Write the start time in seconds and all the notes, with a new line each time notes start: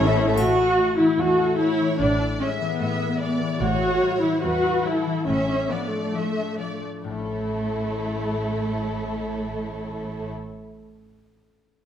Already playing: A1 A2 E3 A3 C#4 E4 A4 C#5 C#6
0.06 A3 C#4 A4 E5
0.17 C#4 E4 A4 C#5
0.27 A3 C#4 E4 A4 E5
0.37 A1 A2 F#4, triangle
0.58 E4
0.78 A3 C#5
0.99 E3 E4
1.19 E2 A3 F#4 A4
1.40 E4
1.59 A3 E4 C#5
1.80 E3
2.00 A1 A2 D4 D5
2.20 E4
2.40 G#3 C#4 D5 E5
2.60 E3 B3
2.80 A2 E5
3.00 E4
3.20 G#3 D5
3.40 E3
3.60 A1 A2 F#4 C#5
3.81 E4
4.01 G3 C#5
4.22 E3 E4
4.43 E2 G3 F#4 B4
4.64 E4
4.84 G3 E4 A4 C#5
5.06 E3
5.27 A1 A2 C#4 E5
5.48 D4
5.69 F3 B3 D5
5.91 A3
6.13 A2 F3 E5
6.36 D4
6.58 F3 D5
6.81 A3
7.04 A1 A2 A3 E4 A4 C#5
7.11 A3
7.18 C#4
7.25 A4
7.32 C#5